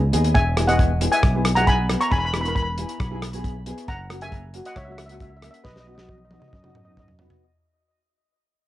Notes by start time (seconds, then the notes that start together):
Already playing: C#2
0.12 D#2 B3 D#4 G#4, closed hi-hat
0.24 closed hi-hat
0.35 E1 E5 G#5, kick, closed hi-hat
0.56 B3 E4 G#4, cross-stick, closed hi-hat
0.67 B3 E4 G#4 D#5 F#5, closed hi-hat
0.79 kick, closed hi-hat
1.01 B3 E4 G#4, closed hi-hat
1.12 E5 G#5, closed hi-hat
1.23 B1, kick, cross-stick, closed hi-hat
1.34 B3 E4 G#4
1.45 cross-stick, closed hi-hat
1.55 B3 E4 G#4 F#5 A#5, closed hi-hat
1.67 G#5 B5, kick, closed hi-hat
1.89 B3 E4 G#4, cross-stick, closed hi-hat
2.01 A#5 C#6, closed hi-hat
2.11 E1 G#5 B5, kick, closed hi-hat
2.18 B5
2.25 B5
2.33 B3 E4 G#4 B5, cross-stick, closed hi-hat
2.41 B3 E4 A#4 B5
2.45 B5, closed hi-hat
2.55 B5, kick, closed hi-hat
2.63 B5
2.78 B3 E4 G#4, closed hi-hat
2.89 closed hi-hat
3.00 B1, kick, cross-stick, closed hi-hat
3.11 B3 E4 G#4
3.22 cross-stick, closed hi-hat
3.33 B3 E4 G#4, closed hi-hat
3.44 kick, closed hi-hat
3.66 B3 E4 G#4, closed hi-hat
3.78 closed hi-hat
3.88 F#1 F#5 A#5, kick, closed hi-hat
4.09 A#3 C#4 F#4, cross-stick, closed hi-hat
4.21 A#3 C#4 G#4 E5 G#5, closed hi-hat
4.32 kick, closed hi-hat
4.54 A#3 C#4 F#4, closed hi-hat
4.65 D#5 F#5, closed hi-hat
4.76 C#2 C#5 E5, kick, cross-stick, closed hi-hat
4.85 A#3 C#4 F#4 E5
4.92 E5
4.98 E5, cross-stick, closed hi-hat
5.06 A#3 C#4 E5, closed hi-hat
5.10 F#4 E5
5.20 E5, kick, closed hi-hat
5.30 E5
5.37 E5
5.42 A#3 C#4 F#4 E5, cross-stick, closed hi-hat
5.51 E5, closed hi-hat
5.64 B1 B4 D#5, kick, snare
5.73 D#5, snare
5.80 D#5
5.86 B3 D#4 F#4 D#5
5.95 B3 D#4 F#4 D#5, snare
6.03 D#5
6.09 D#5, kick, high tom
6.18 D#5
6.25 D#5
6.31 B3 D#4 F#4 D#5, high tom
6.40 D#5, mid tom
6.48 D#5
6.53 F#2 D#5, kick
6.63 B3 D#4 F#4 D#5, mid tom
6.70 D#5
6.75 D#5, mid tom
6.85 B3 D#4 F#4 D#5
6.92 D#5
6.97 D#5, kick, mid tom
7.08 floor tom
7.19 B3 D#4 F#4, floor tom
7.30 floor tom